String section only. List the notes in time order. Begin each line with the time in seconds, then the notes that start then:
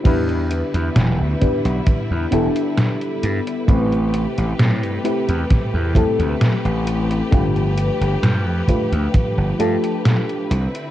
0.05 D3 G3 E4 B4
3.68 C3 A3 G4
7.32 F3
10.50 D3 C4 E4